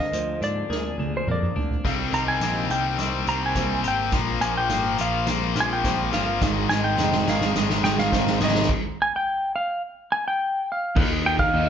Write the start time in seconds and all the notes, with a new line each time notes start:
Already playing: D3 A#3 C4 G#4 A#4
0.00 D#5
0.12 D2 F3 C5, closed hi-hat
0.41 G#2 D4 D5, closed hi-hat
0.70 D2 G#4 A#4, snare
0.98 D2 D4, high tom
1.17 C5
1.27 F2 A#3 A#4, mid tom
1.31 D5
1.43 mid tom
1.55 D2 D4, floor tom
1.70 floor tom
1.83 C2 C3 G3 C4 A#4 D#5 F5, kick, snare, crash
2.12 C2 C3 D#3 G3 C4 D#5 A#5, closed hi-hat
2.28 G#5
2.40 A#1 C3 G3 A#3 C4 D#5, snare, closed hi-hat
2.70 C2 C3 G3 C4 G5, closed hi-hat
2.99 C2 C3 G3 C4, snare, closed hi-hat
3.27 C2 C3 G3 C4 A#5, closed hi-hat
3.46 G#5
3.55 C2 C3 G3 A#3 C4 C5, kick, snare, closed hi-hat
3.84 G#1 C3 G3 C4 G4, closed hi-hat
3.88 G5
4.12 A#1 A#2 F3 A#3 C5 F5 G5, kick, snare, closed hi-hat
4.40 A#1 A#2 F3 A#3 F5 G#5, closed hi-hat
4.57 G5
4.69 G#1 A#2 F3 A#3 F5, snare, closed hi-hat
4.97 A#1 A#2 F3 A#3 F4 F5, closed hi-hat
5.26 A#1 A#2 F3 A#3 C4, snare, closed hi-hat
5.55 A#1 A#2 F3 A#3 F4, snare, closed hi-hat
5.60 G#5
5.73 G5
5.84 A#1 A#2 F3 A#3 C5, kick, snare, closed hi-hat
6.12 G1 A#2 F3 A#3 F4 F5, snare, closed hi-hat
6.41 G#1 G#2 D#3 G#3 G#4 D#5 F5, kick, snare, closed hi-hat
6.69 G#1 G#2 D#3 G#3 D#5 G#5, snare, closed hi-hat
6.84 G5
6.97 F1 G#2 D#3 G#3 C4 D#5, snare, closed hi-hat
7.12 snare
7.26 G#1 G#2 D#3 G#3 G#4 F5, snare, closed hi-hat
7.41 snare
7.55 G#1 G#2 D#3 G#3 D#4, snare, closed hi-hat
7.70 snare
7.83 G#1 G#2 D#3 G#3 G#4 G5, snare, closed hi-hat
7.98 F5, snare
8.12 G#1 G#2 D#3 G#3 C4 C5, kick, snare, closed hi-hat
8.27 snare
8.40 G#1 G#2 D#3 G#3 G#4, snare, closed hi-hat
8.45 D#5, snare
8.55 snare
8.62 snare
8.69 kick, crash
9.02 G#5
9.16 G5
9.56 F5
10.12 G#5
10.28 G5
10.72 F5
10.95 D#2 D#3 A#3 D#4 G4, kick, crash
11.24 G5, crash
11.39 F5, kick
11.54 D#2 D#3 D#5, crash